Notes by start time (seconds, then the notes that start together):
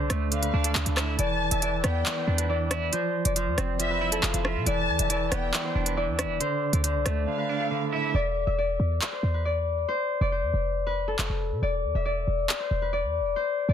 Already playing: D3 C5 D5
0.10 D2 A3, cross-stick, closed hi-hat
0.32 D3 F5, closed hi-hat
0.42 B4, closed hi-hat
0.54 D2 D4
0.64 A4, closed hi-hat
0.75 D2 D3, clap
0.86 D2, closed hi-hat
0.97 E4 E5, cross-stick, clap
1.19 E1 E3 D5 A5, closed hi-hat
1.51 E1 E5, closed hi-hat
1.62 E3 D5, closed hi-hat
1.84 E2 B3 G5, cross-stick, closed hi-hat
2.06 E3, clap
2.17 C5
2.27 E2 D4
2.38 B4, closed hi-hat
2.49 E3 D5
2.71 E4, cross-stick, closed hi-hat
2.93 F3 C5, closed hi-hat
3.25 F1 D5, closed hi-hat
3.36 F3 C5, closed hi-hat
3.47 F2
3.58 F1 C4, cross-stick, closed hi-hat
3.79 F3 E5, closed hi-hat
3.90 B4
4.01 E4
4.12 A4, closed hi-hat
4.23 F1 F3 F5, clap
4.34 F1, closed hi-hat
4.45 F4 E5, cross-stick
4.56 C3
4.66 E1 E3 D5 A5, closed hi-hat
4.88 E2
4.99 E1 E5, closed hi-hat
5.10 E3 D5, closed hi-hat
5.32 E1 B3 G5, cross-stick, closed hi-hat
5.54 E3, clap
5.64 C5
5.75 E1 D4
5.86 B4, closed hi-hat
5.97 E3 D5
6.08 E2
6.19 E4, cross-stick, closed hi-hat
6.24 E1
6.40 D3 C5, closed hi-hat
6.73 D2 D5, closed hi-hat
6.84 D3 C5, closed hi-hat
6.95 C2
7.06 D2 A3, cross-stick, closed hi-hat
7.27 D3 F5
7.38 B4
7.49 D4
7.60 A4
7.71 D3
7.92 E4 E5
8.14 E1 D5
8.47 E1 E5
8.58 D5
8.80 E2
9.01 clap
9.12 C5
9.23 E2
9.34 B4
9.45 D5
9.88 C5
10.21 F1 D5
10.32 C5
10.43 F2
10.54 F1
10.87 B4
11.08 A4
11.19 F1, clap
11.30 F1
11.51 C3
11.62 E1 D5
11.84 E2
11.95 E1 E5
12.05 D5
12.27 E1
12.49 clap
12.60 C5
12.71 E1
12.82 B4
12.93 D5
13.03 E2
13.20 E1
13.36 C5
13.69 D2 D5